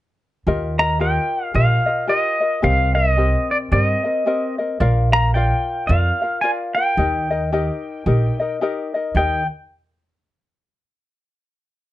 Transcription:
0.47 D#2 F4 G4 A#4 D#5
0.79 F4 A#4 D#5 A#5
1.00 F4 G4 A#4 D#5 G5
1.45 F5
1.54 A#1 F4 G4 A#4 D#5 F5
1.86 F4 A#4 D#5
2.07 F4 G4 A#4 D#5
2.41 F4 A#4 D#5
2.62 C2 C4 G4 A#4 D#5 F5
2.94 C4 A#4 D#5
3.17 C4 G4 A#4 D#5
3.51 D5
3.71 G2 C4 G4 A#4 D5 D#5
3.83 D#5
4.04 C4 A#4 D#5
4.26 C4 G4 A#4 D#5
4.58 C4 A#4 D#5
4.80 A#1 F4 A#4 D5 F5
5.12 F4 A#4 F5 A#5
5.34 F4 A#4 D5 F5 G5
5.87 F2 F4 A#4 D5 F5
6.22 F4 A#4 F5
6.41 F4 A#4 D5 F5 G#5
6.75 F4 A#4 F5 G5
6.97 D#2 D#4 G4 A#4 D#5
7.30 D#4 A#4 D#5
7.52 D#4 G4 A#4 D#5
8.06 A#1 D#4 G4 A#4 D#5
8.40 D#4 A#4 D#5
8.61 D#4 G4 A#4 D#5
8.94 D#4 A#4 D#5
9.15 D#2 D#4 G4 A#4 D#5 G5

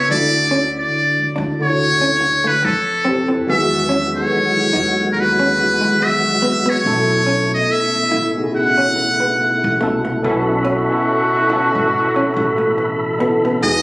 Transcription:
Already playing: C#3 B3 C#4 E4 F#4 B4 C#5
0.08 D2 D3 D4 E4 F#4 D5
0.51 C#4
0.78 D5
1.19 muted upright bass stroke
1.36 D2 D4
1.59 D3 D4 E4 F#4 C#5
2.01 C#4
2.21 muted hollow-body jazz guitar stroke
2.44 A3 B4
2.63 F2 A4, muted hollow-body jazz guitar stroke
3.04 F3 C4 E4 G4 A4
3.28 C4
3.47 E2 D#3 E3 F#3 G#3 B3 F#4 G#4 E5
3.89 C#4
4.13 B3 D#4 E4 F#4 A4 C#5
4.22 B4
4.57 muted upright bass stroke
4.73 D#2 D#4
5.12 A#4
5.20 B4
5.39 C#4
5.57 D#3 E3 B3 F#4 G#4, muted hollow-body jazz guitar stroke
5.81 G#3
6.01 E5, muted hollow-body jazz guitar stroke
6.42 B3
6.66 B3 C#5
6.84 B1 B2 A3 B3 C#4 E4 A4
7.27 C#4
7.54 D#5
7.71 E5
7.95 muted upright bass stroke
8.12 A1 E4
8.35 B2 B3 C#4 D#4 G#4
8.44 E4
8.56 F#5
8.78 C#4
8.96 muted hollow-body jazz guitar stroke
9.20 B3
9.38 muted hollow-body jazz guitar stroke
9.64 A1
9.80 C2 B2 A3 B3 C#4 E4 A4
10.05 A3
10.22 B1 B2 A3 B3 C#4 E4 F#4 A4 E5 B5
10.65 C#4
10.88 B2 B3 C#4 E4 A4
11.49 B2 B3 C#4 E4 A4, muted upright bass stroke
11.75 G#1
12.16 C#4, muted upright bass stroke
12.34 A1, muted hollow-body jazz guitar stroke
12.58 A3
12.78 muted hollow-body jazz guitar stroke
13.18 B2 B3 C#4 E4 A4
13.45 B3
13.60 E2 E3 B3 D#4 F#4 G#4 D#5

